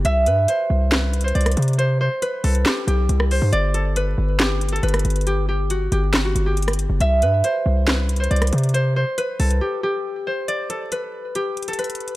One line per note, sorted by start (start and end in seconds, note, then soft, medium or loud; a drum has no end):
0.00 1.86 G4 medium
0.05 0.28 C2 loud
0.05 1.78 E5 loud
0.05 closed hi-hat medium
0.26 0.47 G2 loud
0.26 0.54 B4 medium
0.26 closed hi-hat medium
0.48 0.98 C5 medium
0.48 closed hi-hat medium
0.70 1.33 C2 loud
0.92 1.30 B4 medium
0.92 snare loud
0.92 clap loud
0.92 closed hi-hat medium
1.13 closed hi-hat medium
1.21 1.78 C5 medium
1.21 closed hi-hat medium
1.28 closed hi-hat medium
1.35 1.56 C2 loud
1.35 3.20 D5 medium
1.35 closed hi-hat soft
1.41 closed hi-hat medium
1.46 cross-stick medium
1.46 closed hi-hat medium
1.52 closed hi-hat medium
1.57 2.09 C3 loud
1.57 closed hi-hat medium
1.62 closed hi-hat medium
1.68 closed hi-hat soft
1.73 closed hi-hat soft
1.78 2.00 C5 loud
1.78 closed hi-hat medium
2.01 2.28 C5 medium
2.22 3.37 B4 medium
2.22 closed hi-hat medium
2.44 2.65 C2 loud
2.44 3.74 A4 medium
2.44 closed hi-hat medium
2.44 open hi-hat medium
2.55 closed hi-hat medium
2.66 2.87 G4 medium
2.66 snare loud
2.66 clap loud
2.66 closed hi-hat medium
2.87 3.08 B1 loud
2.87 4.39 G4 medium
2.87 closed hi-hat medium
3.09 3.40 C2 loud
3.09 closed hi-hat medium
3.20 cross-stick loud
3.31 4.02 C5 medium
3.31 open hi-hat medium
3.42 3.52 G2 loud
3.52 4.15 G1 loud
3.52 5.37 D5 loud
3.52 closed hi-hat medium
3.74 4.72 A4 medium
3.74 closed hi-hat medium
3.96 4.83 B4 medium
3.96 closed hi-hat medium
4.18 4.80 G1 loud
4.39 5.26 G4 medium
4.39 snare loud
4.39 clap loud
4.39 closed hi-hat medium
4.61 closed hi-hat medium
4.69 6.92 A4 medium
4.69 closed hi-hat medium
4.76 closed hi-hat medium
4.83 5.04 G1 loud
4.83 6.88 B4 medium
4.83 closed hi-hat medium
4.89 closed hi-hat medium
4.94 cross-stick loud
4.94 closed hi-hat medium
4.99 closed hi-hat medium
5.05 5.88 G1 loud
5.05 closed hi-hat medium
5.10 closed hi-hat medium
5.16 closed hi-hat medium
5.21 closed hi-hat soft
5.27 5.48 G4 medium
5.27 closed hi-hat medium
5.49 5.76 G4 medium
5.70 5.98 F#4 medium
5.70 closed hi-hat medium
5.92 6.34 G1 loud
5.92 6.31 G4 medium
5.92 closed hi-hat medium
6.13 snare loud
6.13 clap loud
6.13 closed hi-hat medium
6.25 6.52 F#4 medium
6.35 6.87 G1 loud
6.35 closed hi-hat medium
6.46 8.82 G4 medium
6.57 closed hi-hat medium
6.62 closed hi-hat medium
6.68 cross-stick loud
6.68 closed hi-hat medium
6.73 closed hi-hat medium
6.79 closed hi-hat medium
6.90 7.00 F#1 loud
7.00 7.24 C2 loud
7.00 8.73 E5 loud
7.00 closed hi-hat medium
7.22 7.43 G2 loud
7.22 7.50 B4 medium
7.22 closed hi-hat medium
7.44 7.93 C5 medium
7.44 closed hi-hat medium
7.66 8.28 C2 loud
7.87 8.26 B4 medium
7.87 snare loud
7.87 clap loud
7.87 closed hi-hat medium
8.09 closed hi-hat medium
8.16 8.74 C5 medium
8.16 closed hi-hat medium
8.24 closed hi-hat medium
8.31 8.52 C2 loud
8.31 10.15 D5 medium
8.31 closed hi-hat soft
8.36 closed hi-hat medium
8.42 cross-stick loud
8.42 closed hi-hat medium
8.47 closed hi-hat medium
8.53 9.05 C3 loud
8.53 closed hi-hat medium
8.58 closed hi-hat medium
8.64 closed hi-hat soft
8.69 closed hi-hat soft
8.74 8.96 C5 loud
8.74 closed hi-hat medium
8.96 9.24 C5 loud
9.18 10.33 B4 medium
9.18 closed hi-hat medium
9.39 9.60 C2 loud
9.39 10.69 A4 medium
9.39 closed hi-hat medium
9.39 open hi-hat medium
9.51 closed hi-hat medium
9.61 9.83 G4 medium
9.83 11.35 G4 medium
10.27 10.98 C5 medium
10.48 12.16 D5 loud
10.48 closed hi-hat medium
10.70 11.68 A4 medium
10.70 closed hi-hat medium
10.92 11.78 B4 medium
10.92 closed hi-hat medium
11.35 12.16 G4 medium
11.35 closed hi-hat medium
11.57 closed hi-hat soft
11.62 closed hi-hat medium
11.68 12.16 A4 medium
11.68 closed hi-hat medium
11.73 closed hi-hat medium
11.79 12.16 B4 medium
11.79 closed hi-hat medium
11.84 closed hi-hat medium
11.90 closed hi-hat medium
11.95 closed hi-hat medium
12.00 closed hi-hat soft
12.08 closed hi-hat medium